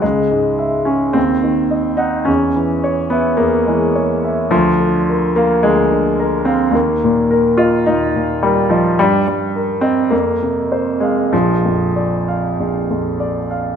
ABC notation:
X:1
M:4/4
L:1/8
Q:1/4=106
K:C#dor
V:1 name="Grand piano"
C,, G,, e G D,, D, d f | E,, E, c e E,, E, c e | [K:Eb] D,, D, B f D,, D, B f | E,, B,, B e E,, B,, B e |
G,, G, B e F,, C, c f | B,,, F,, d f B,,, F,, d f |]
V:2 name="Grand piano"
G,3 C ^B,3 D | C3 B, A, G, z2 | [K:Eb] F,3 B, A,3 C | B,3 F E2 G, F, |
G,3 C B,3 A, | F,6- F, z |]